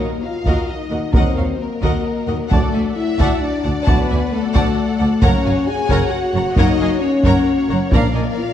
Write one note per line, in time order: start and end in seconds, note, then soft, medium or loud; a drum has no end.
0.00 5.18 F#3 medium
0.00 0.20 A#3 medium
0.00 2.47 A#3 medium
0.00 0.09 F#4 soft
0.00 0.20 A#4 medium
0.00 2.47 A#4 medium
0.00 0.09 A#4 soft
0.00 0.08 C#5 soft
0.00 2.47 D#5 medium
0.23 0.69 F4 medium
0.23 0.68 F5 medium
0.46 0.54 D#2 medium
0.46 0.67 F#4 medium
0.46 0.67 A#4 medium
0.46 0.67 D#5 soft
0.46 0.67 F#5 soft
0.46 taiko medium
0.69 1.15 D#4 medium
0.69 1.15 D#5 medium
0.90 0.98 D#2 soft
0.90 1.00 D#2 soft
0.90 0.98 F#4 soft
0.90 0.99 A#4 soft
0.90 0.98 D#5 soft
0.90 1.00 F#5 soft
1.12 1.22 D#2 medium
1.12 1.31 F#3 soft
1.12 1.59 C4 medium
1.12 1.34 F#4 soft
1.12 1.33 A#4 medium
1.12 1.60 C5 medium
1.12 1.36 D#5 medium
1.12 1.36 F#5 medium
1.12 taiko medium
1.17 1.32 D#3 soft
1.35 1.44 D#2 soft
1.35 1.45 D#2 soft
1.35 1.43 F#4 soft
1.35 1.43 A#4 soft
1.35 1.45 C#5 soft
1.35 1.45 F5 soft
1.58 2.50 A#3 medium
1.58 2.52 A#4 medium
1.82 1.90 D#2 medium
1.82 1.92 D#2 medium
1.82 2.03 F#4 medium
1.82 2.04 A#4 medium
1.82 2.04 D#5 medium
1.82 2.04 F#5 soft
1.82 taiko medium
2.27 2.36 D#2 soft
2.27 2.37 D#2 soft
2.27 2.36 F#4 soft
2.27 2.36 A#4 soft
2.27 2.35 D#5 soft
2.27 2.35 F#5 soft
2.49 2.59 D2 medium
2.49 2.60 D2 medium
2.49 2.95 A3 medium
2.49 5.22 A3 soft
2.49 2.72 F#4 medium
2.49 2.95 A4 medium
2.49 5.22 D5 medium
2.49 2.72 D5 medium
2.49 2.71 F#5 medium
2.49 7.92 F#5 medium
2.49 2.72 A5 medium
2.49 taiko medium
2.53 2.68 F#3 soft
2.53 2.68 A3 medium
2.72 2.82 D2 soft
2.72 2.83 D2 soft
2.72 2.83 F#4 soft
2.72 2.83 D5 soft
2.72 2.80 E5 soft
2.72 2.81 G#5 soft
2.95 3.41 E4 medium
2.95 3.40 E5 medium
3.19 3.27 D2 medium
3.19 3.28 D2 medium
3.19 3.40 F#4 medium
3.19 3.40 D5 medium
3.19 3.40 F#5 medium
3.19 3.40 A5 medium
3.19 taiko medium
3.40 3.86 D4 medium
3.40 3.87 D5 medium
3.63 3.73 D2 soft
3.63 3.74 D2 medium
3.63 3.72 F#4 soft
3.63 3.73 D5 soft
3.63 3.71 F#5 medium
3.63 3.71 A5 medium
3.84 3.96 D2 medium
3.84 4.03 A3 medium
3.84 4.32 B3 medium
3.84 4.08 F#4 medium
3.84 4.32 B4 medium
3.84 4.08 D5 medium
3.84 4.07 F#5 medium
3.84 4.07 A5 medium
3.84 taiko medium
3.88 3.97 D2 medium
3.88 4.04 F#3 medium
4.09 4.18 D2 soft
4.09 4.20 D2 soft
4.09 4.18 F#4 medium
4.09 4.19 D5 medium
4.09 4.17 E5 soft
4.09 4.18 G#5 soft
4.31 5.22 A3 medium
4.31 5.23 A4 medium
4.53 4.63 D2 medium
4.53 4.64 D2 medium
4.53 4.75 F#4 medium
4.53 4.76 D5 medium
4.53 4.75 F#5 medium
4.53 4.75 A5 medium
4.53 taiko medium
4.99 5.09 D2 medium
4.99 5.10 D2 medium
4.99 5.09 F#4 medium
4.99 5.09 D5 soft
4.99 5.07 F#5 medium
4.99 5.08 A5 medium
5.22 5.32 F#1 medium
5.22 5.30 F#2 medium
5.22 5.39 F#3 medium
5.22 5.38 A#3 medium
5.22 8.53 A#3 medium
5.22 5.66 C#4 medium
5.22 7.89 F#4 medium
5.22 5.43 A#4 medium
5.22 5.43 C#5 medium
5.22 5.67 C#5 medium
5.22 7.93 C#5 medium
5.22 5.43 F#5 medium
5.22 5.43 A#5 medium
5.22 taiko medium
5.44 5.55 F#1 medium
5.44 5.52 F#2 medium
5.44 5.53 A#4 soft
5.44 5.53 C#5 medium
5.44 5.54 F5 soft
5.44 5.53 G#5 soft
5.68 6.13 G#4 loud
5.68 6.11 G#5 loud
5.89 6.00 F#1 medium
5.89 5.98 F#2 medium
5.89 6.10 A#4 medium
5.89 6.10 C#5 medium
5.89 6.11 F#5 medium
5.89 6.11 A#5 medium
5.89 taiko medium
6.10 6.57 F#4 medium
6.10 6.56 F#5 medium
6.33 6.44 F#1 medium
6.33 6.41 F#2 medium
6.33 6.43 A#4 medium
6.33 6.43 C#5 medium
6.33 6.44 F#5 medium
6.33 6.44 A#5 medium
6.54 6.65 F#2 medium
6.54 6.72 F#3 medium
6.54 6.72 A#3 medium
6.54 7.01 D#4 loud
6.54 6.78 A#4 medium
6.54 6.78 C#5 medium
6.54 7.01 D#5 medium
6.54 taiko medium
6.58 6.66 F#1 medium
6.58 6.79 F#5 medium
6.58 6.79 A#5 medium
6.80 6.88 F#1 medium
6.80 6.88 F#2 soft
6.80 6.89 A#4 medium
6.80 6.89 C#5 medium
6.80 6.88 F5 soft
6.80 6.89 G#5 soft
6.99 7.75 C#4 medium
6.99 7.89 C#5 medium
7.23 7.33 F#1 medium
7.23 7.32 F#2 medium
7.23 7.46 A#4 medium
7.23 7.46 C#5 medium
7.23 7.46 F#5 medium
7.23 7.47 A#5 medium
7.23 taiko medium
7.69 7.79 F#1 soft
7.69 7.78 F#2 medium
7.69 7.77 A#4 medium
7.69 7.77 C#5 medium
7.69 7.78 F#5 medium
7.69 7.78 A#5 medium
7.91 8.01 A#1 medium
7.91 8.53 A#2 medium
7.91 8.01 A#2 medium
7.91 8.08 F3 medium
7.91 8.36 A#3 medium
7.91 8.08 D4 medium
7.91 8.13 A#4 medium
7.91 8.37 A#4 medium
7.91 8.53 A#4 medium
7.91 8.53 D5 medium
7.91 8.13 D5 medium
7.91 8.53 F5 medium
7.91 8.14 F5 medium
7.91 8.14 A#5 medium
7.91 taiko medium
8.14 8.22 A#1 soft
8.14 8.23 A#2 soft
8.14 8.23 A#4 medium
8.14 8.23 D5 soft
8.14 8.23 D#5 soft
8.14 8.23 G#5 soft
8.38 8.53 F4 medium
8.38 8.53 F5 medium